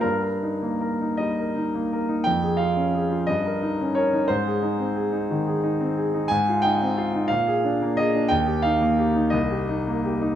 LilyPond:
\new Staff \with { instrumentName = "Grand piano" } { \time 6/8 \key aes \major \tempo 4. = 59 << { bes'4. ees''4. | g''8 f''4 ees''4 des''8 | c''4. r4. | \key ees \major aes''8 g''4 f''4 ees''8 |
g''8 f''4 ees''4. | } \\ { g,16 bes'16 ees'16 bes16 bes'16 ees'16 g16 bes'16 ees'16 bes16 bes'16 ees'16 | f,16 aes'16 f'16 des'16 aes'16 f'16 g,16 bes'16 ees'16 des'16 bes'16 ees'16 | aes,16 aes'16 ees'16 c'16 aes'16 ees'16 ees16 aes'16 ees'16 c'16 aes'16 ees'16 | aes,16 f'16 ees'16 c'16 f'16 ees'16 bes,16 aes'16 d'16 bes16 aes'16 d'16 |
ees,16 g'16 ees'16 bes16 g'16 ees'16 c,16 g'16 ees'16 bes16 g'16 ees'16 | } >> }